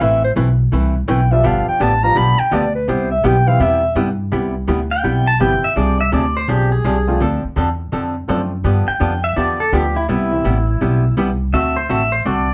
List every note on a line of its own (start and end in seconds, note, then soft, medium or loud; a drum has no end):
0.00 0.35 A1 medium
0.00 0.22 E3 medium
0.00 0.22 A3 medium
0.00 0.22 C4 medium
0.00 0.22 E4 medium
0.00 0.22 B4 medium
0.00 0.24 E5 medium
0.24 0.32 C5 loud
0.36 0.71 B1 medium
0.36 0.48 E3 medium
0.36 0.48 A3 medium
0.36 0.48 C4 medium
0.36 0.48 E4 medium
0.36 0.48 B4 medium
0.72 1.07 C2 medium
0.72 0.94 E3 medium
0.72 0.94 A3 medium
0.72 0.94 C4 medium
0.72 0.95 E4 medium
0.72 0.95 B4 medium
1.08 1.43 B1 loud
1.08 1.20 E3 medium
1.08 1.20 A3 medium
1.08 1.20 C4 medium
1.08 1.20 E4 medium
1.08 1.20 B4 medium
1.08 1.33 G5 medium
1.31 1.78 F3 medium
1.31 1.78 G3 medium
1.31 1.78 B3 medium
1.31 1.78 D4 medium
1.31 1.78 F4 medium
1.31 1.47 E5 loud
1.43 1.65 G1 medium
1.43 1.65 D3 medium
1.43 1.66 F3 medium
1.43 1.66 B3 medium
1.43 1.66 D4 medium
1.43 1.66 G4 medium
1.43 1.68 F5 medium
1.67 1.84 G5 loud
1.67 muted upright bass stroke soft
1.80 2.15 A1 medium
1.80 1.92 D3 medium
1.80 1.92 F3 medium
1.80 1.92 B3 medium
1.80 1.92 D4 medium
1.80 1.92 G4 medium
1.80 2.05 A5 medium
2.03 2.15 F3 medium
2.03 2.15 G3 medium
2.03 2.15 B3 medium
2.03 2.15 D4 medium
2.03 2.15 F4 medium
2.03 2.19 A#5 loud
2.15 2.38 B1 medium
2.15 2.37 D3 medium
2.15 2.38 F3 medium
2.15 2.38 B3 medium
2.15 2.38 D4 medium
2.15 2.38 G4 medium
2.15 2.41 B5 loud
2.39 2.56 G5 loud
2.39 muted upright bass stroke soft
2.51 2.87 D2 medium
2.51 2.63 D3 medium
2.51 2.63 F3 medium
2.51 2.64 B3 medium
2.51 2.64 D4 medium
2.51 2.64 G4 medium
2.51 2.74 D5 medium
2.75 2.91 B4 medium
2.88 3.23 C2 medium
2.88 3.10 C3 medium
2.88 3.10 G3 medium
2.88 3.10 B3 medium
2.88 3.10 E4 medium
2.88 3.10 G4 medium
2.88 3.11 C5 medium
3.11 3.27 E5 medium
3.24 3.59 B1 medium
3.24 3.35 C3 medium
3.24 3.36 G3 medium
3.24 3.36 B3 medium
3.24 3.36 E4 medium
3.24 3.36 G4 medium
3.24 3.49 G5 loud
3.46 3.58 E3 medium
3.46 3.59 G3 medium
3.46 3.59 B3 medium
3.46 3.59 C4 medium
3.46 3.59 E4 medium
3.46 3.63 F5 loud
3.60 3.95 E2 medium
3.60 3.82 C3 medium
3.60 3.82 G3 medium
3.60 3.82 B3 medium
3.60 3.82 E4 medium
3.60 3.82 G4 medium
3.60 3.97 E5 medium
3.95 4.31 G2 medium
3.95 4.07 C3 medium
3.95 4.08 G3 medium
3.95 4.08 B3 medium
3.95 4.08 E4 medium
3.95 4.08 G4 medium
4.32 4.67 C2 medium
4.32 4.54 C3 medium
4.32 4.54 G3 medium
4.32 4.54 B3 medium
4.32 4.54 E4 medium
4.32 4.54 G4 medium
4.68 5.03 D2 medium
4.68 4.79 C3 medium
4.68 4.80 G3 medium
4.68 4.80 B3 medium
4.68 4.80 E4 medium
4.68 4.80 G4 medium
4.92 5.26 G5 medium
5.04 5.39 B1 medium
5.04 5.26 C3 medium
5.04 5.26 G3 medium
5.04 5.26 B3 medium
5.04 5.26 E4 medium
5.04 5.26 G4 medium
5.28 5.40 A5 medium
5.40 5.61 G1 medium
5.40 5.52 C3 medium
5.40 5.61 E3 medium
5.40 5.61 G3 medium
5.40 5.52 G3 medium
5.40 5.61 B3 medium
5.40 5.52 B3 medium
5.40 5.61 C4 medium
5.40 5.61 E4 medium
5.40 5.52 E4 medium
5.40 5.52 G4 medium
5.40 5.63 G5 medium
5.63 5.76 E5 medium
5.63 muted upright bass stroke soft
5.76 6.11 C2 medium
5.76 5.98 C3 medium
5.76 5.98 F3 medium
5.76 5.98 C4 medium
5.76 5.98 D4 medium
5.76 5.98 G#4 medium
5.76 5.99 D5 medium
6.00 6.12 E5 medium
6.12 6.47 D2 medium
6.12 6.23 C3 medium
6.12 6.24 F3 medium
6.12 6.24 C4 medium
6.12 6.24 D4 medium
6.12 6.24 G#4 medium
6.12 6.35 D5 medium
6.37 6.49 C5 medium
6.48 6.83 B1 medium
6.48 6.70 C3 medium
6.48 6.70 F3 medium
6.48 6.70 C4 medium
6.48 6.70 D4 medium
6.48 6.71 G4 medium
6.48 6.70 G#4 medium
6.72 7.19 G#4 medium
6.84 7.19 C2 medium
6.84 6.96 C3 medium
6.84 6.96 F3 medium
6.84 6.96 C4 medium
6.84 6.96 D4 medium
6.84 6.96 G#4 medium
7.07 7.19 F3 medium
7.07 7.19 A3 medium
7.07 7.19 C4 medium
7.07 7.19 D4 medium
7.07 7.19 F4 medium
7.20 7.42 D2 medium
7.20 7.42 D3 medium
7.20 7.42 F3 medium
7.20 7.42 C4 medium
7.20 7.42 D4 medium
7.20 7.43 A4 medium
7.44 muted upright bass stroke soft
7.56 7.91 E2 medium
7.56 7.68 D3 medium
7.56 7.68 F3 medium
7.56 7.68 C4 medium
7.56 7.68 D4 medium
7.56 7.68 A4 medium
7.92 8.27 F2 medium
7.92 8.14 D3 soft
7.92 8.14 F3 medium
7.92 8.14 C4 medium
7.92 8.14 D4 medium
7.92 8.15 A4 medium
8.28 8.64 F#2 medium
8.28 8.40 D3 medium
8.28 8.49 F3 medium
8.28 8.40 F3 medium
8.28 8.49 A3 medium
8.28 8.49 C4 medium
8.28 8.40 C4 medium
8.28 8.49 D4 medium
8.28 8.40 D4 medium
8.28 8.49 F4 medium
8.28 8.41 A4 medium
8.64 8.86 G2 medium
8.64 8.86 D3 medium
8.64 8.86 F3 medium
8.64 8.86 B3 medium
8.64 8.87 D4 medium
8.64 8.87 G4 medium
8.88 9.23 G5 medium
8.88 muted upright bass stroke soft
9.00 9.36 F2 loud
9.00 9.12 D3 medium
9.00 9.12 F3 medium
9.00 9.12 B3 medium
9.00 9.12 D4 medium
9.00 9.12 G4 medium
9.24 9.36 E5 medium
9.36 9.72 E2 medium
9.36 9.58 D3 medium
9.36 9.58 F3 medium
9.36 9.59 B3 medium
9.36 9.59 D4 medium
9.36 9.59 G4 medium
9.36 9.59 D5 medium
9.60 9.73 A4 medium
9.72 10.08 D2 medium
9.72 9.84 D3 medium
9.72 9.93 F3 medium
9.72 9.84 F3 medium
9.72 9.93 G3 medium
9.72 9.94 B3 medium
9.72 9.85 B3 medium
9.72 9.94 D4 medium
9.72 9.85 D4 medium
9.72 9.94 F4 medium
9.72 9.96 G4 medium
9.72 9.85 G4 medium
9.96 10.08 E4 medium
10.09 10.44 C2 medium
10.09 10.31 C3 medium
10.09 10.31 G3 medium
10.09 10.31 B3 medium
10.09 11.14 E4 medium
10.09 10.31 E4 medium
10.09 10.31 G4 medium
10.31 10.43 E3 medium
10.31 10.43 G3 medium
10.31 10.43 B3 medium
10.31 10.44 C4 medium
10.31 10.44 E4 medium
10.44 10.80 A1 medium
10.44 10.56 C3 medium
10.44 10.56 G3 medium
10.44 10.57 B3 medium
10.44 10.57 E4 medium
10.44 10.57 G4 medium
10.81 11.16 B1 medium
10.81 11.03 C3 medium
10.81 11.03 G3 medium
10.81 11.03 B3 medium
10.81 11.03 E4 medium
10.81 11.03 G4 medium
11.17 11.52 C2 medium
11.17 11.29 C3 medium
11.17 11.29 G3 medium
11.17 11.29 B3 medium
11.17 11.29 E4 medium
11.17 11.29 G4 medium
11.53 11.88 D2 medium
11.53 11.75 D3 medium
11.53 11.75 A3 medium
11.53 11.75 C4 medium
11.53 11.76 F#4 medium
11.53 11.76 A4 medium
11.53 11.76 E5 medium
11.76 11.89 C5 medium
11.89 12.25 A1 medium
11.89 12.01 D3 medium
11.89 12.01 A3 medium
11.89 12.01 C4 medium
11.89 12.01 F#4 medium
11.89 12.02 A4 medium
11.89 12.12 E5 medium
12.12 12.25 C5 medium
12.25 12.54 C2 medium
12.25 12.47 D3 medium
12.25 12.48 A3 medium
12.25 12.48 C4 medium
12.25 12.48 F#4 medium
12.25 12.48 A4 medium
12.25 12.54 D5 medium